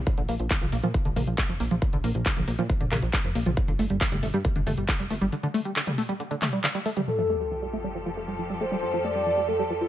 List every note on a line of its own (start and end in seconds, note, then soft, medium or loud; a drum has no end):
0.07 0.09 D3 medium
0.07 kick loud
0.07 closed hi-hat medium
0.18 0.26 A#1 medium
0.18 0.22 D3 loud
0.18 closed hi-hat soft
0.29 0.37 A#1 loud
0.29 0.35 A#3 loud
0.29 open hi-hat loud
0.39 0.48 A#1 medium
0.39 0.46 F3 medium
0.39 closed hi-hat soft
0.50 0.55 D3 medium
0.50 kick loud
0.50 clap loud
0.50 closed hi-hat medium
0.61 0.70 A#1 medium
0.61 0.66 F3 medium
0.61 closed hi-hat soft
0.61 mid tom medium
0.72 0.81 A#1 loud
0.72 0.77 A#3 loud
0.72 open hi-hat loud
0.83 0.92 A#2 medium
0.83 0.88 F3 loud
0.83 closed hi-hat soft
0.94 0.97 D3 medium
0.94 kick loud
0.94 closed hi-hat medium
1.05 1.14 A#1 medium
1.05 1.09 D3 loud
1.05 closed hi-hat soft
1.16 1.25 A#1 loud
1.16 1.22 A#3 loud
1.16 open hi-hat loud
1.16 mid tom medium
1.27 1.36 A#1 medium
1.27 1.33 F3 medium
1.27 closed hi-hat soft
1.38 1.42 D3 medium
1.38 kick loud
1.38 clap loud
1.38 closed hi-hat medium
1.49 1.58 F1 medium
1.49 1.53 F3 medium
1.49 closed hi-hat soft
1.60 1.69 A#1 loud
1.60 1.64 A#3 loud
1.60 open hi-hat loud
1.71 1.80 A#1 medium
1.71 1.75 F3 loud
1.71 closed hi-hat soft
1.82 1.84 D3 medium
1.82 kick loud
1.82 closed hi-hat medium
1.93 2.02 A#1 medium
1.93 1.97 D3 loud
1.93 closed hi-hat soft
2.04 2.13 A#1 loud
2.04 2.10 A#3 loud
2.04 open hi-hat loud
2.15 2.24 A#1 loud
2.15 2.21 F3 medium
2.15 closed hi-hat soft
2.26 2.30 D3 medium
2.26 kick loud
2.26 clap loud
2.26 closed hi-hat medium
2.37 2.46 A#1 medium
2.37 2.41 F3 medium
2.37 closed hi-hat soft
2.37 mid tom medium
2.48 2.56 A#1 loud
2.48 2.52 A#3 loud
2.48 open hi-hat loud
2.59 2.67 A#2 medium
2.59 2.63 F3 loud
2.59 closed hi-hat soft
2.70 2.72 D3 medium
2.70 kick loud
2.70 closed hi-hat medium
2.80 2.89 A#1 medium
2.80 2.85 D3 loud
2.80 closed hi-hat soft
2.91 3.00 A#1 loud
2.91 2.98 A#3 loud
2.91 clap medium
2.91 open hi-hat loud
2.91 mid tom medium
3.02 3.11 A#1 medium
3.02 3.09 F3 medium
3.02 closed hi-hat soft
3.13 3.17 D3 medium
3.13 kick loud
3.13 clap loud
3.13 closed hi-hat medium
3.24 3.33 F1 medium
3.24 3.28 F3 medium
3.24 closed hi-hat soft
3.35 3.44 A#1 loud
3.35 3.39 A#3 loud
3.35 open hi-hat loud
3.46 3.55 A#1 medium
3.46 3.50 F3 loud
3.46 closed hi-hat soft
3.46 mid tom medium
3.57 3.60 D3 medium
3.57 kick loud
3.57 closed hi-hat medium
3.68 3.77 G1 medium
3.68 3.72 D3 loud
3.68 closed hi-hat soft
3.79 3.88 G1 loud
3.79 3.85 A3 loud
3.79 open hi-hat loud
3.90 3.99 G1 medium
3.90 3.96 G3 medium
3.90 closed hi-hat soft
4.01 4.05 D3 medium
4.01 kick loud
4.01 clap loud
4.01 closed hi-hat medium
4.12 4.21 G1 medium
4.12 4.16 G3 medium
4.12 closed hi-hat soft
4.12 mid tom medium
4.23 4.32 G1 loud
4.23 4.27 A3 loud
4.23 open hi-hat loud
4.34 4.43 G2 medium
4.34 4.38 G3 loud
4.34 closed hi-hat soft
4.45 4.47 D3 medium
4.45 kick loud
4.45 closed hi-hat medium
4.56 4.64 G1 medium
4.56 4.60 D3 loud
4.56 closed hi-hat soft
4.67 4.75 G1 loud
4.67 4.73 A3 loud
4.67 open hi-hat loud
4.67 mid tom medium
4.77 4.86 G1 medium
4.77 4.84 G3 medium
4.77 closed hi-hat soft
4.88 4.93 D3 medium
4.88 kick loud
4.88 clap loud
4.88 closed hi-hat medium
4.99 5.08 F1 medium
4.99 5.04 G3 medium
4.99 closed hi-hat soft
5.10 5.19 G1 loud
5.10 5.15 A3 loud
5.10 open hi-hat loud
5.21 5.30 G1 medium
5.21 5.26 G3 loud
5.21 closed hi-hat soft
5.32 5.35 D3 medium
5.32 closed hi-hat medium
5.43 5.47 D3 loud
5.43 closed hi-hat soft
5.54 5.60 A3 loud
5.54 open hi-hat loud
5.65 5.71 G3 medium
5.65 closed hi-hat soft
5.76 5.80 D3 medium
5.76 clap loud
5.76 closed hi-hat medium
5.87 5.91 G3 medium
5.87 closed hi-hat soft
5.87 mid tom medium
5.98 6.02 A3 loud
5.98 open hi-hat loud
6.09 6.13 G3 loud
6.09 closed hi-hat soft
6.20 6.22 D3 medium
6.20 closed hi-hat medium
6.31 6.35 D3 loud
6.31 closed hi-hat soft
6.42 6.48 A3 loud
6.42 clap medium
6.42 open hi-hat loud
6.42 mid tom medium
6.53 6.59 G3 medium
6.53 closed hi-hat soft
6.64 6.68 D3 medium
6.64 clap loud
6.64 closed hi-hat medium
6.75 6.79 G3 medium
6.75 closed hi-hat soft
6.86 6.90 A3 loud
6.86 open hi-hat loud
6.97 7.01 G3 loud
6.97 closed hi-hat soft
6.97 mid tom medium
7.07 9.88 F2 medium
7.07 9.88 F3 medium
7.07 7.10 F3 medium
7.07 9.88 G4 medium
7.07 7.64 A4 loud
7.07 9.88 A4 medium
7.07 sub drop medium
7.19 7.23 F3 loud
7.29 7.36 A3 loud
7.40 7.47 G3 medium
7.51 7.56 F3 medium
7.62 7.66 G3 medium
7.73 7.77 A3 loud
7.84 7.88 G3 loud
7.95 7.98 F3 medium
8.06 8.10 F3 loud
8.17 8.23 A3 loud
8.28 8.34 G3 medium
8.39 8.43 F3 medium
8.50 8.54 G3 medium
8.61 8.65 A3 loud
8.61 9.02 C5 medium
8.72 8.76 G3 loud
8.83 8.85 F3 medium
8.94 8.98 F3 loud
9.04 9.11 A3 loud
9.04 9.46 D5 medium
9.15 9.22 G3 medium
9.26 9.31 F3 medium
9.37 9.42 G3 medium
9.48 9.53 A3 loud
9.48 9.88 A4 medium
9.59 9.63 G3 loud
9.70 9.73 F3 medium
9.81 9.85 F3 loud